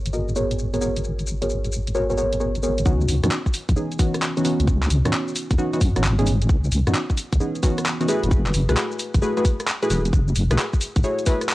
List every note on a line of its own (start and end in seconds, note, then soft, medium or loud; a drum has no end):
0.00 2.84 G#1 medium
0.06 closed hi-hat medium
0.06 shaker soft
0.13 0.34 B3 medium
0.13 0.34 F#4 medium
0.13 0.34 G#4 medium
0.13 0.34 A#4 medium
0.13 0.34 D#5 medium
0.13 shaker soft
0.28 shaker soft
0.36 0.70 B3 medium
0.36 0.70 F#4 medium
0.36 0.70 G#4 medium
0.36 0.70 A#4 medium
0.36 0.70 C#5 loud
0.36 shaker medium
0.51 closed hi-hat medium
0.51 shaker soft
0.59 shaker soft
0.73 0.80 B3 medium
0.73 0.80 F#4 medium
0.73 0.80 G#4 medium
0.73 0.80 A#4 medium
0.73 0.80 C#5 medium
0.73 closed hi-hat soft
0.73 shaker soft
0.81 1.38 B3 medium
0.81 1.38 F#4 medium
0.81 1.38 G#4 medium
0.81 1.38 A#4 medium
0.81 1.38 C#5 loud
0.81 shaker medium
0.96 closed hi-hat medium
0.96 shaker soft
1.04 shaker soft
1.19 closed hi-hat soft
1.19 shaker soft
1.27 shaker medium
1.42 1.93 B3 medium
1.42 1.93 F#4 medium
1.42 1.93 G#4 medium
1.42 1.93 A#4 medium
1.42 1.93 C#5 medium
1.42 closed hi-hat medium
1.42 shaker soft
1.50 shaker soft
1.64 closed hi-hat soft
1.64 shaker soft
1.72 shaker medium
1.87 closed hi-hat medium
1.87 shaker soft
1.95 2.07 B3 medium
1.95 2.07 F#4 medium
1.95 2.07 G#4 medium
1.95 2.07 A#4 medium
1.95 2.07 C#5 loud
1.95 shaker soft
2.10 2.16 B3 medium
2.10 2.16 F#4 medium
2.10 2.16 G#4 medium
2.10 2.16 A#4 medium
2.10 2.16 C#5 loud
2.10 shaker soft
2.17 2.38 B3 medium
2.17 2.38 F#4 medium
2.17 2.38 G#4 medium
2.17 2.38 A#4 medium
2.17 2.38 C#5 loud
2.17 shaker medium
2.33 closed hi-hat medium
2.33 shaker soft
2.40 2.53 B3 medium
2.40 2.53 F#4 medium
2.40 2.53 G#4 medium
2.40 2.53 A#4 medium
2.40 2.53 C#5 medium
2.40 shaker soft
2.55 closed hi-hat soft
2.55 shaker soft
2.63 2.81 B3 medium
2.63 2.81 F#4 medium
2.63 2.81 G#4 medium
2.63 2.81 A#4 medium
2.63 2.81 C#5 medium
2.63 shaker medium
2.78 closed hi-hat medium
2.78 shaker soft
2.86 3.06 C#2 loud
2.86 3.17 E3 loud
2.86 3.17 B3 medium
2.86 3.17 C#4 medium
2.86 3.17 D#4 medium
2.86 3.17 F#4 loud
2.86 kick loud
2.86 shaker soft
3.01 shaker soft
3.08 3.21 C#2 loud
3.08 open hi-hat loud
3.08 shaker medium
3.23 3.30 F#2 medium
3.23 3.36 E3 medium
3.23 3.36 B3 medium
3.23 3.36 C#4 medium
3.23 3.36 D#4 medium
3.23 3.36 F#4 medium
3.23 cross-stick medium
3.23 closed hi-hat medium
3.23 shaker soft
3.31 clap loud
3.31 shaker soft
3.46 kick medium
3.46 shaker soft
3.54 open hi-hat loud
3.54 shaker medium
3.69 3.75 E2 medium
3.69 kick loud
3.69 closed hi-hat medium
3.69 shaker soft
3.76 3.97 E3 medium
3.76 3.97 B3 medium
3.76 3.97 C#4 medium
3.76 3.97 D#4 medium
3.76 3.97 G#4 medium
3.76 shaker soft
3.92 closed hi-hat soft
3.92 shaker soft
3.99 4.33 E3 loud
3.99 4.33 B3 medium
3.99 4.33 C#4 medium
3.99 4.33 D#4 medium
3.99 4.33 F#4 loud
3.99 kick loud
3.99 open hi-hat loud
3.99 shaker medium
4.14 cross-stick medium
4.14 closed hi-hat medium
4.14 shaker soft
4.22 clap loud
4.22 shaker soft
4.37 4.44 E3 medium
4.37 4.44 B3 medium
4.37 4.44 C#4 medium
4.37 4.44 D#4 medium
4.37 4.44 F#4 medium
4.37 closed hi-hat soft
4.37 shaker soft
4.45 5.02 E3 loud
4.45 5.02 B3 medium
4.45 5.02 C#4 medium
4.45 5.02 D#4 medium
4.45 5.02 F#4 loud
4.45 open hi-hat loud
4.45 shaker medium
4.60 4.88 C#2 medium
4.60 closed hi-hat medium
4.60 shaker soft
4.67 kick loud
4.67 shaker soft
4.83 clap medium
4.83 shaker soft
4.90 5.03 C#2 loud
4.90 open hi-hat loud
4.90 shaker medium
5.05 5.12 F#2 medium
5.05 5.57 E3 medium
5.05 5.57 B3 medium
5.05 5.57 C#4 medium
5.05 5.57 D#4 medium
5.05 5.57 F#4 medium
5.05 cross-stick medium
5.05 closed hi-hat medium
5.05 shaker soft
5.13 clap loud
5.13 shaker soft
5.28 shaker soft
5.36 open hi-hat loud
5.36 shaker medium
5.51 5.57 E2 medium
5.51 kick loud
5.51 closed hi-hat medium
5.51 shaker soft
5.58 5.71 E3 loud
5.58 5.71 B3 medium
5.58 5.71 C#4 medium
5.58 5.71 D#4 medium
5.58 5.71 F#4 loud
5.58 shaker soft
5.73 5.80 E3 medium
5.73 5.80 B3 medium
5.73 5.80 C#4 medium
5.73 5.80 D#4 medium
5.73 5.80 F#4 loud
5.73 closed hi-hat soft
5.73 shaker soft
5.81 5.94 F#2 medium
5.81 kick loud
5.81 open hi-hat loud
5.81 shaker medium
5.96 6.48 G#1 medium
5.96 6.03 E3 medium
5.96 6.03 B3 medium
5.96 6.03 C#4 medium
5.96 6.03 D#4 medium
5.96 6.03 F#4 medium
5.96 cross-stick medium
5.96 closed hi-hat medium
5.96 shaker soft
6.04 clap loud
6.04 shaker soft
6.19 6.32 E3 medium
6.19 6.32 B3 medium
6.19 6.32 C#4 medium
6.19 6.32 D#4 medium
6.19 6.32 G#4 loud
6.19 closed hi-hat soft
6.19 shaker soft
6.27 open hi-hat loud
6.27 shaker medium
6.42 closed hi-hat medium
6.42 shaker soft
6.49 6.70 C#2 loud
6.49 kick loud
6.49 shaker soft
6.64 shaker soft
6.72 6.85 C#2 loud
6.72 open hi-hat loud
6.72 shaker medium
6.87 6.94 F#2 medium
6.87 7.00 E3 medium
6.87 7.00 B3 medium
6.87 7.00 C#4 medium
6.87 7.00 D#4 medium
6.87 7.00 F#4 medium
6.87 cross-stick medium
6.87 closed hi-hat medium
6.87 shaker soft
6.95 clap loud
6.95 shaker soft
7.10 kick medium
7.10 shaker soft
7.17 open hi-hat loud
7.17 shaker medium
7.33 7.39 E2 medium
7.33 kick loud
7.33 closed hi-hat medium
7.33 shaker soft
7.40 7.61 E3 medium
7.40 7.61 B3 medium
7.40 7.61 C#4 medium
7.40 7.61 D#4 medium
7.40 7.61 G#4 medium
7.40 shaker soft
7.55 closed hi-hat soft
7.55 shaker soft
7.63 7.97 E3 loud
7.63 7.97 B3 medium
7.63 7.97 C#4 medium
7.63 7.97 D#4 medium
7.63 7.97 F#4 loud
7.63 kick loud
7.63 open hi-hat loud
7.63 shaker medium
7.78 cross-stick medium
7.78 closed hi-hat medium
7.78 shaker soft
7.86 clap loud
7.86 shaker soft
8.01 8.07 E3 medium
8.01 8.07 B3 medium
8.01 8.07 C#4 medium
8.01 8.07 D#4 medium
8.01 8.07 F#4 loud
8.01 closed hi-hat soft
8.01 shaker soft
8.08 8.65 A3 loud
8.08 8.65 E4 medium
8.08 8.65 F#4 medium
8.08 8.65 G#4 medium
8.08 8.65 B4 loud
8.08 open hi-hat loud
8.08 shaker medium
8.23 8.52 F#1 medium
8.23 closed hi-hat medium
8.23 shaker soft
8.31 kick loud
8.31 shaker soft
8.46 clap medium
8.46 shaker soft
8.54 8.67 F#1 loud
8.54 open hi-hat loud
8.54 shaker medium
8.69 8.76 B1 medium
8.69 9.20 A3 medium
8.69 9.20 E4 medium
8.69 9.20 F#4 medium
8.69 9.20 G#4 medium
8.69 9.20 B4 medium
8.69 cross-stick medium
8.69 closed hi-hat medium
8.69 shaker soft
8.77 clap loud
8.77 shaker soft
8.92 shaker soft
8.99 open hi-hat loud
8.99 shaker medium
9.14 9.21 A1 medium
9.14 kick loud
9.14 closed hi-hat medium
9.14 shaker soft
9.22 9.35 A3 loud
9.22 9.35 E4 medium
9.22 9.35 F#4 medium
9.22 9.35 G#4 medium
9.22 9.35 B4 loud
9.22 shaker soft
9.37 9.44 A3 loud
9.37 9.44 E4 medium
9.37 9.44 F#4 medium
9.37 9.44 G#4 medium
9.37 9.44 B4 loud
9.37 closed hi-hat soft
9.37 shaker soft
9.45 kick loud
9.45 open hi-hat loud
9.45 shaker medium
9.60 cross-stick medium
9.60 closed hi-hat medium
9.60 shaker soft
9.68 clap loud
9.68 shaker soft
9.82 9.88 A3 loud
9.82 9.88 E4 medium
9.82 9.88 F#4 medium
9.82 9.88 G#4 medium
9.82 9.88 B4 loud
9.82 closed hi-hat soft
9.82 shaker soft
9.90 10.11 E1 loud
9.90 10.03 A3 medium
9.90 10.03 E4 medium
9.90 10.03 F#4 medium
9.90 10.03 G#4 medium
9.90 10.03 B4 medium
9.90 open hi-hat loud
9.90 shaker medium
10.05 closed hi-hat medium
10.05 shaker soft
10.13 10.33 F#1 loud
10.13 kick loud
10.13 shaker soft
10.28 shaker soft
10.36 10.48 F#1 loud
10.36 open hi-hat loud
10.36 shaker medium
10.51 10.57 B1 medium
10.51 10.64 A3 medium
10.51 10.64 E4 medium
10.51 10.64 F#4 medium
10.51 10.64 G#4 medium
10.51 10.64 B4 medium
10.51 cross-stick medium
10.51 closed hi-hat medium
10.51 shaker soft
10.58 clap loud
10.58 shaker soft
10.73 kick medium
10.73 shaker soft
10.81 open hi-hat loud
10.81 shaker medium
10.96 11.03 A1 medium
10.96 kick loud
10.96 closed hi-hat medium
10.96 shaker soft
11.04 11.25 A3 medium
11.04 11.25 E4 medium
11.04 11.25 F#4 medium
11.04 11.25 G#4 medium
11.04 11.25 C#5 medium
11.04 shaker soft
11.19 closed hi-hat soft
11.19 shaker soft
11.26 11.55 A3 loud
11.26 11.55 E4 loud
11.26 11.55 F#4 medium
11.26 11.55 G#4 medium
11.26 11.55 B4 loud
11.26 kick loud
11.26 open hi-hat loud
11.26 shaker medium
11.41 cross-stick medium
11.41 closed hi-hat medium
11.41 shaker soft
11.49 clap loud
11.49 shaker soft